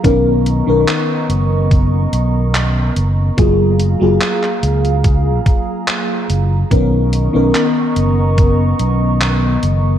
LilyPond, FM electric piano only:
\new Staff \with { instrumentName = "FM electric piano" } { \time 4/4 \key b \lydian \tempo 4 = 72 <dis b cis' ais'>8. <dis b cis' ais'>2.~ <dis b cis' ais'>16 | <fis ais eis' gis'>8. <fis ais eis' gis'>2.~ <fis ais eis' gis'>16 | <dis b cis' ais'>8. <dis b cis' ais'>2.~ <dis b cis' ais'>16 | }